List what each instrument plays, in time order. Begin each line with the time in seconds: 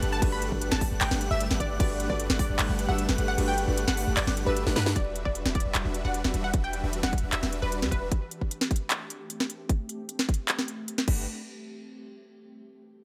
Already playing: grand piano G3 D4 F#4 A4 B4, ambient pad G3 F#4 A4 B4
0.02 808-style bass G1, supersaw synth A3 D4 G4 B4 F#5, digital synth lead F#6, closed hi-hat
0.13 synth pluck A5
0.21 808-style bass G1, grand piano G3 D4 F#4 A4 B4, supersaw synth D4 B4 F#5, digital synth lead F#6, kick, closed hi-hat, crash
0.32 synth pluck B5
0.42 closed hi-hat
0.50 808-style bass G1, grand piano G3 D4 F#4 A4 B4, supersaw synth A3 D4 G4 B4 F#5, digital synth lead F#6, kick
0.61 closed hi-hat
0.71 808-style bass G1, supersaw synth A3 D4 G4 B4 F#5, synth pluck A5, digital synth lead F#6, snare
0.81 kick, open hi-hat
0.91 808-style bass G1, supersaw synth A3 D4 G4 B4 F#5, digital synth lead F#6
1.01 808-style bass G1, supersaw synth A3 D4 G4 B4 F#5, synth pluck G5, digital synth lead F#6, clap, closed hi-hat, crash
1.11 808-style bass G1, supersaw synth A3 D4 G4 B4 F#5, digital synth lead F#6, snare
1.21 closed hi-hat
1.31 808-style bass G1, supersaw synth A3 D4 G4 B4 E5, synth pluck E5, digital synth lead E6
1.40 closed hi-hat
1.50 808-style bass G1, supersaw synth A3 D4 G4 B4 F#5, digital synth lead F#6, snare
1.60 808-style bass G1, supersaw synth D4 B4, synth pluck D5, digital synth lead F#6, kick, closed hi-hat
1.79 808-style bass G1, grand piano G3 D4 F#4 A4 B4, supersaw synth A3 D4 G4 B4 F#5, synth pluck D5, digital synth lead F#6, kick, closed hi-hat, crash
2.00 closed hi-hat
2.08 808-style bass G1, grand piano G3 D4 F#4 A4 B4, supersaw synth A3 D4 G4 B4 F#5, synth pluck D5, digital synth lead F#6, kick
2.20 closed hi-hat
2.29 808-style bass G1, supersaw synth A3 D4 G4 B4 F#5, digital synth lead F#6, snare
2.39 synth pluck D5, kick, open hi-hat
2.49 808-style bass G1, supersaw synth A3 D4 G4 B4 F#5, digital synth lead F#6
2.59 808-style bass G1, supersaw synth A3 D4 G4 B4 F#5, digital synth lead F#6, clap, closed hi-hat, crash
2.69 808-style bass G1, supersaw synth A3 D4 G4 B4 F#5, digital synth lead F#6
2.79 closed hi-hat
2.87 808-style bass G1, grand piano G3 D4 F#4 A4, supersaw synth A3 D4 G4 B4 E5, synth pluck F#5, digital synth lead E6
2.91 grand piano B4
2.98 closed hi-hat
3.08 808-style bass G1, supersaw synth A3 D4 G4 B4 F#5, digital synth lead F#6, snare
3.18 808-style bass G1, supersaw synth A3 D4 G4 B4 F#5, digital synth lead F#6, closed hi-hat
3.28 synth pluck F#5
3.37 808-style bass G1, grand piano G3 D4 F#4 A4 B4, supersaw synth A3 D4 G4 B4 F#5, digital synth lead F#6, closed hi-hat, crash
3.48 synth pluck G5
3.58 closed hi-hat
3.66 808-style bass G1, grand piano G3 D4 F#4 A4, supersaw synth A3 D4 G4 B4 F#5, digital synth lead F#6
3.70 grand piano B4
3.77 closed hi-hat
3.87 808-style bass G1, supersaw synth A3 D4 G4 B4 F#5, synth pluck F#5, digital synth lead F#6, snare
3.97 open hi-hat
4.07 808-style bass G1, supersaw synth A3 D4 G4 B4 F#5, digital synth lead F#6
4.17 808-style bass G1, supersaw synth A3 D4 G4, synth pluck D5, digital synth lead F#6, clap, closed hi-hat, crash
4.27 808-style bass G1, supersaw synth A3 D4 G4 B4 F#5, digital synth lead F#6, snare
4.37 closed hi-hat
4.45 808-style bass G1, grand piano G3 D4 F#4 A4 B4, supersaw synth A3 D4 G4 B4 E5, synth pluck B4, digital synth lead E6
4.57 closed hi-hat
4.66 808-style bass G1, supersaw synth A3 D4 G4 B4 F#5, digital synth lead F#6, snare
4.76 808-style bass G2, supersaw synth A3 D4 G4 B4 F#5, synth pluck B4, digital synth lead F#6, snare, closed hi-hat
4.86 snare
4.96 808-style bass E1, ambient pad E3 D4 F#4 G4, supersaw synth G3 D4 F#4 B4 E5, synth pluck D5, kick, closed hi-hat
5.16 closed hi-hat
5.25 808-style bass E1, supersaw synth G3 D4 F#4 B4 E5, synth pluck D5, kick
5.35 closed hi-hat
5.45 808-style bass E1, supersaw synth G3 D4 F#4 B4 E5, snare
5.55 synth pluck D5, kick, closed hi-hat
5.60 closed hi-hat
5.65 808-style bass E1, supersaw synth G3 D4 F#4 B4 E5
5.75 808-style bass E1, supersaw synth G3 D4 F#4 B4 E5, clap, closed hi-hat
5.85 808-style bass E1, supersaw synth G3 D4 F#4 B4 E5
5.94 closed hi-hat
6.05 808-style bass E1, supersaw synth G3 D4 F#4 B4 D5, synth pluck F#5
6.14 closed hi-hat
6.24 808-style bass E1, supersaw synth G3 D4 F#4 B4 E5, snare
6.34 808-style bass E1, supersaw synth G3 D4 F#4 B4 E5, closed hi-hat
6.44 synth pluck F#5
6.53 808-style bass E1, supersaw synth G3 D4 B4 E5, kick, closed hi-hat
6.64 synth pluck G5
6.73 closed hi-hat
6.83 808-style bass E1, supersaw synth G3 D4 F#4 B4 E5
6.93 closed hi-hat
7.03 808-style bass E1, supersaw synth G3 D4 F#4 B4 E5, synth pluck F#5, snare
7.13 kick, closed hi-hat
7.18 closed hi-hat
7.23 808-style bass E1, supersaw synth G3 D4 F#4 B4 E5
7.32 808-style bass E1, supersaw synth G3 D4 F#4 B4 E5, synth pluck E5, clap, closed hi-hat
7.43 808-style bass E1, supersaw synth G3 D4 F#4 B4 E5, snare
7.53 closed hi-hat
7.62 808-style bass E1, supersaw synth G3 D4 F#4 B4 D5, synth pluck B4
7.72 closed hi-hat
7.82 808-style bass E2, supersaw synth G3 D4 F#4 B4 E5, snare
7.91 808-style bass E1, supersaw synth G3 D4 F#4 E5, synth pluck B4, kick, closed hi-hat
8.11 ambient pad A3 C4, kick, closed hi-hat
8.31 closed hi-hat
8.41 kick
8.51 closed hi-hat
8.61 snare
8.71 kick, closed hi-hat
8.76 closed hi-hat
8.90 clap, closed hi-hat
9.10 closed hi-hat
9.30 closed hi-hat
9.40 snare
9.50 closed hi-hat
9.69 kick, closed hi-hat
9.89 closed hi-hat
10.09 closed hi-hat
10.19 snare
10.29 kick, closed hi-hat
10.34 closed hi-hat
10.48 clap, closed hi-hat
10.59 snare
10.68 closed hi-hat
10.88 closed hi-hat
10.98 snare
11.08 808-style bass G1, supersaw synth A3 D4 G4 B4 F#5, kick, crash